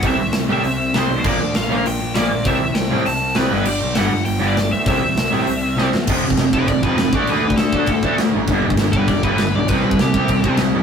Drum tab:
CC |----------------|x---------------|----------------|x---------------|
HH |o---o---o---o---|----o---o---o---|o---o---o---o---|----o---o---o---|
SD |----o-------o---|----o-------o---|----o-------o---|----o-------o---|
BD |o---------------|o---------------|o---------------|----------------|

CC |----------------|x---x---x---x---|x---x---x---x---|x---x---x---x---|
HH |o---o---o-------|----------------|----------------|----------------|
SD |----o-------o-o-|----o-------o---|----o-------o---|----o-------o---|
BD |o---------------|o--o--o-o-o---o-|---o--o-o-o-----|o--o--o-o-o-----|

CC |x---x---x---x---|
HH |----------------|
SD |----o-------o---|
BD |o--o--o-o-o-----|